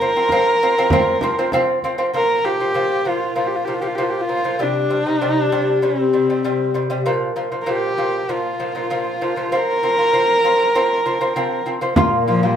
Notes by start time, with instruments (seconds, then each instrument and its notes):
Already playing: horsehead fiddle A#4
0.01 lute F3 C4
0.16 lute F3 C4
0.29 lute F3 C4, frame drum
0.63 lute F3 C4
0.78 lute F3 C4
0.90 lute F3 C4, frame drum
1.21 lute F3 C4, frame drum
1.39 lute F3 C4
1.52 lute F3 C4, frame drum
1.82 lute F3 C4, frame drum
1.98 lute F3 C4
2.14 lute A#2 F3, horsehead fiddle A#4
2.45 lute A#2 F3, horsehead fiddle G4
2.61 lute A#2 F3
2.74 lute A#2 F3
3.05 lute A#2 F3, horsehead fiddle F4
3.36 lute A#2 F3, horsehead fiddle F4
3.47 horsehead fiddle G4
3.55 horsehead fiddle F4
3.64 lute A#2 F3, horsehead fiddle G4
3.74 horsehead fiddle F4
3.81 lute A#2 F3, horsehead fiddle G4
3.87 horsehead fiddle F4
3.95 lute A#2 F3, horsehead fiddle G4
4.03 horsehead fiddle F4
4.10 horsehead fiddle G4
4.21 horsehead fiddle F4
4.29 lute A#2 F3
4.44 lute A#2 F3
4.59 lute C3 G3, horsehead fiddle D4
4.90 lute C3 G3
5.06 lute C3 G3, horsehead fiddle D#4
5.18 lute C3, horsehead fiddle D4
5.22 lute G3
5.52 lute C3 G3
5.82 lute C3 G3, horsehead fiddle C4
6.13 lute C3 G3
6.30 lute C3 G3
6.44 lute C3 G3
6.74 lute C3 G3
6.90 lute C3 G3
7.06 lute A#2 F3
7.36 lute A#2 F3
7.52 lute A#2 F3
7.62 horsehead fiddle A#4
7.66 lute A#2 F3, horsehead fiddle G4
7.98 lute A#2 F3
8.29 lute A#2 F3, horsehead fiddle F4
8.59 lute A#2 F3
8.75 lute A#2 F3
8.90 lute A#2 F3
9.21 lute A#2 F3
9.36 lute A#2 F3
9.52 lute F3 C4, horsehead fiddle A#4
9.83 lute F3 C4
9.98 lute F3 C4
10.13 lute F3 C4
10.44 lute F3 C4
10.75 lute F3 C4
11.06 lute F3 C4
11.21 lute F3 C4
11.36 lute F3 C4
11.66 lute F3 C4
11.81 lute F3 C4
11.96 cello A#2, lute A#3 F4, frame drum
12.12 frame drum
12.28 horsehead fiddle F3, lute A#3 F4
12.43 horsehead fiddle G3, lute A#3 F4